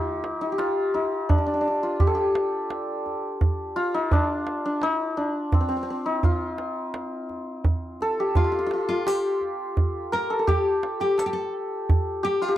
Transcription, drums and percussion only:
0.24 tombak tek
0.59 tombak tek
0.95 tombak ka
1.30 tombak dum
2.00 tombak dum
2.35 tombak tek
2.70 tombak tek
3.06 tombak ka
3.41 tombak dum
4.12 tombak dum
4.47 tombak tek
4.82 tombak tek
5.17 tombak ka
5.52 tombak dum
6.23 tombak dum
6.58 tombak tek
6.94 tombak tek
7.29 tombak ka
7.64 tombak dum
8.01 tombak ka
8.35 tombak dum
8.71 tombak tek
9.07 tombak tek
9.41 tombak ka
9.77 tombak dum
10.48 tombak dum
10.83 tombak tek
11.19 tombak tek
11.89 tombak dum

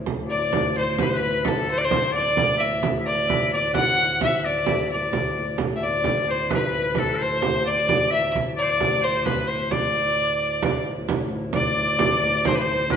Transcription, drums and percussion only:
0.06 frame drum
0.30 frame drum
0.53 frame drum
0.76 frame drum
0.98 frame drum
1.45 frame drum
1.68 frame drum
1.91 frame drum
2.14 frame drum
2.37 frame drum
2.83 frame drum
3.07 frame drum
3.30 frame drum
3.52 frame drum
3.75 frame drum
4.21 frame drum
4.66 frame drum
4.90 frame drum
5.13 frame drum
5.35 frame drum
5.58 frame drum
5.82 frame drum
6.04 frame drum
6.28 frame drum
6.51 frame drum
6.95 frame drum
7.19 frame drum
7.42 frame drum
7.66 frame drum
7.89 frame drum
8.35 frame drum
8.58 frame drum
8.80 frame drum
9.02 frame drum
9.26 frame drum
9.71 frame drum
9.94 frame drum
10.62 frame drum
11.08 frame drum
11.32 frame drum
11.53 frame drum
11.77 frame drum
11.99 frame drum
12.45 frame drum
12.69 frame drum
12.90 frame drum

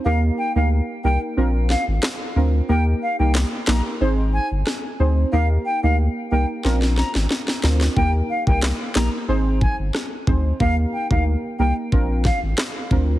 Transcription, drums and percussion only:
1.70 snare
2.03 cross-stick, snare, clap
3.35 snare, clap
3.67 snare, clap
4.67 cross-stick, snare
6.65 snare
6.82 snare
6.98 snare
7.15 snare
7.31 snare
7.48 snare
7.64 snare
7.81 snare
7.97 kick
8.47 kick
8.63 snare, clap
8.95 snare, clap
9.61 kick
9.95 cross-stick, snare
10.27 kick
10.60 kick
11.11 kick
11.92 kick
12.25 kick, snare
12.58 cross-stick, snare, clap
12.91 kick

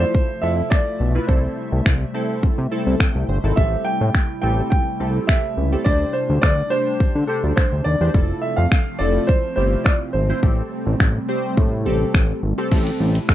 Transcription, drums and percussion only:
0.15 kick
0.71 finger snap, kick
1.29 kick
1.86 finger snap, kick
2.43 kick
3.00 finger snap, kick
3.57 kick
4.15 finger snap, kick
4.72 kick
5.29 finger snap, kick
5.86 kick
6.43 finger snap, kick
7.00 kick
7.57 finger snap, kick
8.14 kick
8.72 finger snap, kick
9.29 kick
9.86 finger snap, kick
10.43 kick
11.00 finger snap, kick
11.57 kick
12.14 finger snap, kick
12.72 kick, crash
12.87 closed hi-hat
13.15 closed hi-hat
13.29 finger snap, kick

